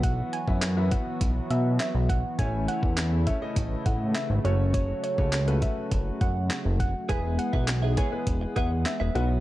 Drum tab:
HH |x-x-x-x-x-x-x-x-|x-x-x-x-x-x-x-x-|x-x-xxx-x-x-x-x-|x-x-x-x-x-x-x-x-|
CP |----x-------x---|----x-------x---|----x-------x---|----x-------x---|
SD |----o-------o---|----o-------o---|----o-------o---|----o-------o---|
BD |o--o--o-o-----o-|o--o--o-o-o-----|o--o--o-o-o---o-|o--o--o-o-o-----|